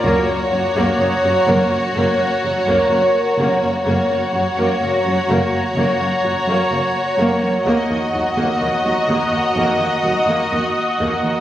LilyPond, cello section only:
\new Staff \with { instrumentName = "Cello section" } { \clef bass \time 4/4 \key fis \mixolydian \tempo 4 = 63 fis,16 fis,16 fis,16 fis,16 fis,16 fis,16 fis,16 fis,16 fis,16 fis,16 fis,16 fis,16 fis,16 r16 fis,16 fis,16 | fis,16 fis,16 fis,16 fis,16 fis,16 fis,16 fis,16 fis,16 fis,16 fis,16 fis,16 fis,16 fis,16 r16 fis,16 fis,16 | dis,16 dis,16 dis,16 dis,16 dis,16 dis,16 dis,16 dis,16 dis,16 dis,16 dis,16 dis,16 dis,16 r16 dis,16 dis,16 | }